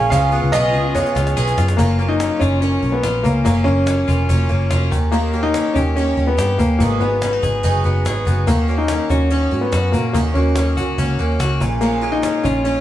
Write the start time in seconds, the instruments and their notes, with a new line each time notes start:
Already playing: clean electric guitar A#2 G#3 G#4, twelve-string acoustic guitar C#4 F4 G#4
0.10 picked electric bass C#2, string section C#3 B3 F4, twelve-string acoustic guitar C#3 G#3 B3 F4 G#4, upright piano F5, cajon bass
0.32 twelve-string acoustic guitar B3 F4 G#4
0.43 picked electric bass C#2
0.52 picked electric bass B1, twelve-string acoustic guitar C#3 G#3 B3 F4 G#4, upright piano D#5, cajon slap
0.74 picked electric bass C#2, twelve-string acoustic guitar B3 F4 G#4
0.95 twelve-string acoustic guitar G#3 B3 F4 G#4, upright piano C#5, cajon bass, cajon slap
1.06 cajon slap
1.15 picked electric bass C#2, twelve-string acoustic guitar B3 F4 G#4, cajon slap
1.27 cajon slap
1.37 picked electric bass B1, twelve-string acoustic guitar C#3 G#3 B3 F4 G#4, cajon slap
1.48 cajon slap
1.57 picked electric bass F#2, twelve-string acoustic guitar B3 F4 G#4, cajon slap
1.68 cajon slap
1.77 picked electric bass F#1, twelve-string acoustic guitar F#3 A#3 C#4 F4, upright piano A#3, cajon bass
1.99 twelve-string acoustic guitar A#3 C#4 F4, cajon slap
2.08 upright piano D#4
2.20 twelve-string acoustic guitar F#3 A#3 C#4 F4, cajon slap
2.40 picked electric bass F#1, twelve-string acoustic guitar A#3 C#4 F4, upright piano C#4, cajon bass
2.61 twelve-string acoustic guitar F#3 A#3 C#4 F4, upright piano C#4, cajon slap
2.83 picked electric bass B1, twelve-string acoustic guitar A#3 C#4 F4, cajon slap
2.92 upright piano B3
3.03 picked electric bass A#1, twelve-string acoustic guitar F#3 A#3 C#4 F4, cajon slap
3.23 picked electric bass C#2, upright piano A#3, twelve-string acoustic guitar A#3 C#4 F4, cajon bass
3.45 picked electric bass F#1, twelve-string acoustic guitar F#3 A#3 C#4 F4, upright piano A#3, cajon bass
3.64 picked electric bass F#1, upright piano C#4, twelve-string acoustic guitar C#4 F4, cajon slap
3.69 twelve-string acoustic guitar A#3
3.86 twelve-string acoustic guitar F#3 A#3 C#4 F4, cajon slap
4.08 picked electric bass F1, twelve-string acoustic guitar A#3 C#4 F4, cajon bass
4.29 picked electric bass F1, twelve-string acoustic guitar F#3 A#3 C#4 F4, cajon bass
4.49 picked electric bass F#1, twelve-string acoustic guitar A#3 C#4 F4, cajon slap
4.70 picked electric bass F1, twelve-string acoustic guitar F#3 A#3 C#4 F4, cajon slap
4.92 picked electric bass D#2, clean electric guitar D#3, twelve-string acoustic guitar A#3 C#4 G4, cajon bass
5.12 twelve-string acoustic guitar D#3 A#3 C#4 G4, upright piano A#3, cajon slap
5.33 twelve-string acoustic guitar A#3 C#4 G4, cajon slap
5.43 upright piano D#4
5.54 twelve-string acoustic guitar D#3 A#3 C#4 G4, cajon slap
5.74 picked electric bass D#2, upright piano C#4, twelve-string acoustic guitar C#4 G4, cajon bass
5.78 twelve-string acoustic guitar A#3
5.96 twelve-string acoustic guitar D#3 A#3 C#4 G4, upright piano C#4
6.17 picked electric bass D#2, twelve-string acoustic guitar A#3 C#4 G4, cajon slap
6.27 upright piano B3
6.37 picked electric bass G2, twelve-string acoustic guitar D#3 A#3 C#4 G4, cajon slap
6.58 picked electric bass D#2, upright piano A#3, twelve-string acoustic guitar A#3 C#4 G4, cajon bass
6.79 picked electric bass G#1, twelve-string acoustic guitar G#2 D#3 F#3 B3 D#4 G#4, upright piano A#3, cajon bass
7.00 picked electric bass G#1, twelve-string acoustic guitar F#3 B3 D#4 G#4, upright piano B3, cajon slap
7.21 twelve-string acoustic guitar F#3 B3 D#4 G#4, clean electric guitar C#4, cajon slap
7.33 clean electric guitar D#4
7.42 picked electric bass G#1, twelve-string acoustic guitar F#3 B3 D#4 G#4, cajon bass
7.63 picked electric bass F#1, twelve-string acoustic guitar G#2 D#3 F#3 B3 D#4 G#4, cajon bass
7.84 picked electric bass F#1, twelve-string acoustic guitar F#3 B3 D#4 G#4, cajon slap
8.05 picked electric bass G#1, twelve-string acoustic guitar F#3 B3 D#4 G#4, cajon slap
8.25 picked electric bass F#1, twelve-string acoustic guitar F#3 B3 D#4 G#4, cajon bass
8.47 picked electric bass D#2, twelve-string acoustic guitar D#3 A#3 C#4 F#4, upright piano A#3, cajon bass
8.68 twelve-string acoustic guitar A#3 C#4 F#4
8.78 upright piano D#4
8.88 twelve-string acoustic guitar D#3 A#3 C#4 F#4, cajon slap
9.09 picked electric bass D#2, twelve-string acoustic guitar A#3 C#4 F#4, upright piano C#4, cajon bass
9.30 twelve-string acoustic guitar D#3 A#3 C#4 F#4, upright piano C#4, cajon slap
9.51 picked electric bass G#2, twelve-string acoustic guitar A#3 C#4 F#4, cajon slap
9.61 upright piano B3
9.72 picked electric bass F#2, twelve-string acoustic guitar D#3 A#3 C#4 F#4, cajon slap
9.92 picked electric bass A#2, upright piano A#3, twelve-string acoustic guitar A#3 C#4 F#4, cajon bass
10.13 picked electric bass D#2, twelve-string acoustic guitar D#3 A#3 C#4 F#4, upright piano A#3, cajon bass
10.34 picked electric bass D#2, twelve-string acoustic guitar A#3 C#4 F#4, upright piano C#4, cajon slap
10.56 twelve-string acoustic guitar D#3 A#3 C#4 F#4, cajon slap
10.77 picked electric bass C#2, twelve-string acoustic guitar A#3 C#4 F#4, cajon bass
10.98 picked electric bass C#2, twelve-string acoustic guitar D#3 A#3 C#4 F#4, cajon bass
11.19 picked electric bass D#2, twelve-string acoustic guitar A#3 C#4 F#4, cajon slap
11.39 picked electric bass C#2, twelve-string acoustic guitar D#3 A#3 C#4 F#4, cajon slap
11.60 picked electric bass A#1, clean electric guitar A#2, twelve-string acoustic guitar G#3 C#4 F4, cajon bass
11.81 twelve-string acoustic guitar A#2 F3 G#3 C#4 F4, upright piano A#3
12.02 twelve-string acoustic guitar G#3 C#4 F4, cajon slap
12.12 upright piano D#4
12.22 twelve-string acoustic guitar F3 G#3 C#4 F4, cajon slap
12.44 picked electric bass A#1, twelve-string acoustic guitar G#3 C#4 F4, upright piano C#4, cajon bass
12.64 twelve-string acoustic guitar A#2 F3 G#3 C#4 F4, upright piano C#4